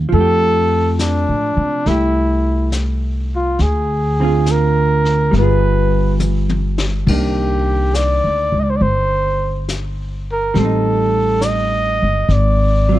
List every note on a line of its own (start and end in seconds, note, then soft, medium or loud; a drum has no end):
0.00 0.12 D#3 soft
0.00 0.12 C#4 soft
0.00 0.13 F4 medium
0.09 1.24 F2 medium
0.09 3.58 F3 soft
0.09 brush sweep soft
0.13 1.86 A3 soft
0.13 0.96 A4 loud
0.20 1.88 G4 medium
0.99 1.89 D4 medium
0.99 snare soft
0.99 hi-hat pedal soft
1.29 1.55 A2 medium
1.57 1.83 C3 medium
1.86 3.55 C2 medium
1.86 3.60 A3 soft
1.86 2.73 E4 medium
1.86 3.61 G4 soft
1.86 brush sweep soft
1.86 snare soft
2.72 snare soft
2.72 hi-hat pedal medium
3.36 3.63 F4 medium
3.59 5.29 D2 medium
3.59 4.53 G#4 medium
3.59 brush sweep soft
3.59 snare soft
4.20 5.34 D3 soft
4.20 5.34 C4 soft
4.20 5.35 F4 medium
4.25 5.36 G#4 soft
4.46 snare soft
4.46 hi-hat pedal medium
4.51 5.36 A#4 medium
5.05 snare soft
5.31 7.03 G1 medium
5.31 7.06 G3 medium
5.31 brush sweep soft
5.31 snare soft
5.36 7.09 B3 medium
5.36 7.10 F4 soft
5.36 6.18 B4 medium
5.43 7.12 G#4 medium
6.20 hi-hat pedal soft
6.20 high tom soft
6.49 high tom soft
6.78 snare medium
7.07 8.19 C2 medium
7.07 10.54 D#3 soft
7.07 10.57 A#3 soft
7.07 10.57 D4 soft
7.07 7.97 G4 medium
7.07 brush sweep soft
7.07 kick medium
7.07 crash medium
7.94 8.61 D5 medium
7.94 snare soft
7.94 hi-hat pedal medium
8.24 8.50 D2 medium
8.52 8.79 C#2 medium
8.60 8.72 D5 medium
8.60 8.65 D#5 medium
8.70 8.78 C5 medium
8.77 8.84 D5 medium
8.81 10.51 G1 medium
8.81 9.69 C5 medium
8.81 brush sweep soft
9.68 snare soft
9.68 hi-hat pedal medium
10.32 10.60 A#4 medium
10.54 11.98 A1 medium
10.54 12.29 G3 soft
10.54 brush sweep soft
10.54 snare soft
10.59 12.31 C4 soft
10.59 11.46 A4 medium
10.65 12.34 D#4 medium
11.41 12.34 D#5 loud
11.41 snare soft
11.41 hi-hat pedal soft
12.02 12.27 G1 medium
12.29 12.99 G#1 medium
12.29 12.99 D5 medium
12.29 brush sweep soft
12.29 snare soft
12.89 12.99 F#3 soft
12.89 12.99 C4 medium
12.95 12.99 F4 medium